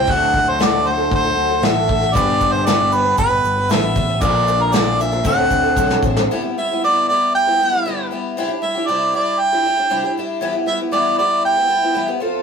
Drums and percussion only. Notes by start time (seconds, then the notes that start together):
0.07 kick, closed hi-hat
0.34 kick
0.60 snare, closed hi-hat
1.11 kick, closed hi-hat
1.62 snare, closed hi-hat
1.89 kick
2.03 snare
2.15 kick, closed hi-hat, shaker
2.41 kick, shaker
2.66 snare, closed hi-hat, shaker
2.80 shaker
2.92 shaker
3.17 kick, closed hi-hat, shaker
3.44 shaker
3.69 snare, closed hi-hat, shaker
3.95 kick, shaker
4.21 kick, closed hi-hat, shaker
4.48 shaker
4.72 snare, closed hi-hat, shaker
5.00 shaker
5.12 shaker
5.24 kick, shaker
5.51 kick, shaker
5.65 shaker
5.77 kick, shaker
5.90 snare, shaker
6.03 kick, shaker
6.16 snare, shaker